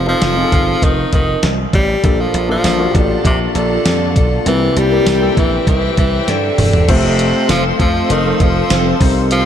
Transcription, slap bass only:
0, 0, Header, 1, 2, 480
1, 0, Start_track
1, 0, Key_signature, -1, "major"
1, 0, Tempo, 606061
1, 1613, Time_signature, 4, 2, 24, 8
1, 7487, End_track
2, 0, Start_track
2, 0, Title_t, "Slap bass"
2, 0, Program_c, 0, 36
2, 0, Note_on_c, 0, 29, 107
2, 105, Note_off_c, 0, 29, 0
2, 172, Note_on_c, 0, 29, 99
2, 345, Note_off_c, 0, 29, 0
2, 414, Note_on_c, 0, 31, 95
2, 586, Note_off_c, 0, 31, 0
2, 652, Note_on_c, 0, 29, 105
2, 825, Note_off_c, 0, 29, 0
2, 893, Note_on_c, 0, 29, 100
2, 1066, Note_off_c, 0, 29, 0
2, 1132, Note_on_c, 0, 36, 87
2, 1305, Note_off_c, 0, 36, 0
2, 1373, Note_on_c, 0, 33, 95
2, 1546, Note_off_c, 0, 33, 0
2, 1614, Note_on_c, 0, 34, 105
2, 1786, Note_off_c, 0, 34, 0
2, 1852, Note_on_c, 0, 34, 100
2, 2025, Note_off_c, 0, 34, 0
2, 2092, Note_on_c, 0, 34, 99
2, 2265, Note_off_c, 0, 34, 0
2, 2334, Note_on_c, 0, 33, 92
2, 2506, Note_off_c, 0, 33, 0
2, 2573, Note_on_c, 0, 34, 101
2, 2746, Note_off_c, 0, 34, 0
2, 2812, Note_on_c, 0, 34, 93
2, 2985, Note_off_c, 0, 34, 0
2, 3053, Note_on_c, 0, 41, 87
2, 3294, Note_on_c, 0, 35, 91
2, 3306, Note_off_c, 0, 41, 0
2, 3466, Note_off_c, 0, 35, 0
2, 3532, Note_on_c, 0, 36, 111
2, 3705, Note_off_c, 0, 36, 0
2, 3773, Note_on_c, 0, 36, 102
2, 3946, Note_off_c, 0, 36, 0
2, 4014, Note_on_c, 0, 36, 106
2, 4187, Note_off_c, 0, 36, 0
2, 4253, Note_on_c, 0, 34, 104
2, 4426, Note_off_c, 0, 34, 0
2, 4490, Note_on_c, 0, 36, 103
2, 4664, Note_off_c, 0, 36, 0
2, 4733, Note_on_c, 0, 36, 95
2, 4906, Note_off_c, 0, 36, 0
2, 4973, Note_on_c, 0, 43, 96
2, 5146, Note_off_c, 0, 43, 0
2, 5214, Note_on_c, 0, 28, 92
2, 5386, Note_off_c, 0, 28, 0
2, 5453, Note_on_c, 0, 29, 117
2, 5799, Note_off_c, 0, 29, 0
2, 5934, Note_on_c, 0, 29, 107
2, 6106, Note_off_c, 0, 29, 0
2, 6174, Note_on_c, 0, 41, 102
2, 6346, Note_off_c, 0, 41, 0
2, 6414, Note_on_c, 0, 29, 112
2, 6586, Note_off_c, 0, 29, 0
2, 6653, Note_on_c, 0, 29, 94
2, 6826, Note_off_c, 0, 29, 0
2, 6894, Note_on_c, 0, 29, 91
2, 7066, Note_off_c, 0, 29, 0
2, 7133, Note_on_c, 0, 36, 98
2, 7487, Note_off_c, 0, 36, 0
2, 7487, End_track
0, 0, End_of_file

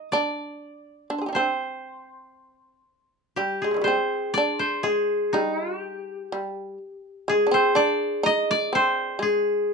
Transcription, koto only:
0, 0, Header, 1, 2, 480
1, 0, Start_track
1, 0, Tempo, 995025
1, 654, Time_signature, 2, 2, 24, 8
1, 2104, Tempo, 970874
1, 4761, End_track
2, 0, Start_track
2, 0, Title_t, "Koto"
2, 0, Program_c, 0, 107
2, 0, Note_on_c, 0, 75, 74
2, 58, Note_on_c, 0, 74, 74
2, 87, Note_off_c, 0, 75, 0
2, 650, Note_on_c, 0, 72, 64
2, 830, Note_off_c, 0, 74, 0
2, 1478, Note_off_c, 0, 72, 0
2, 1623, Note_on_c, 0, 67, 60
2, 1745, Note_on_c, 0, 68, 54
2, 1774, Note_off_c, 0, 67, 0
2, 1852, Note_on_c, 0, 72, 70
2, 2092, Note_on_c, 0, 74, 86
2, 2217, Note_off_c, 0, 72, 0
2, 2219, Note_on_c, 0, 72, 70
2, 2335, Note_off_c, 0, 68, 0
2, 2337, Note_on_c, 0, 68, 72
2, 2582, Note_on_c, 0, 63, 66
2, 2611, Note_off_c, 0, 68, 0
2, 2809, Note_off_c, 0, 63, 0
2, 2809, Note_on_c, 0, 67, 66
2, 2883, Note_off_c, 0, 74, 0
2, 3067, Note_off_c, 0, 72, 0
2, 3554, Note_on_c, 0, 68, 81
2, 3584, Note_off_c, 0, 67, 0
2, 3675, Note_on_c, 0, 72, 77
2, 3785, Note_on_c, 0, 74, 84
2, 4031, Note_on_c, 0, 75, 92
2, 4061, Note_off_c, 0, 74, 0
2, 4154, Note_on_c, 0, 74, 90
2, 4183, Note_off_c, 0, 75, 0
2, 4272, Note_off_c, 0, 72, 0
2, 4274, Note_on_c, 0, 72, 83
2, 4506, Note_off_c, 0, 68, 0
2, 4508, Note_on_c, 0, 68, 69
2, 4761, Note_off_c, 0, 68, 0
2, 4761, Note_off_c, 0, 72, 0
2, 4761, Note_off_c, 0, 74, 0
2, 4761, End_track
0, 0, End_of_file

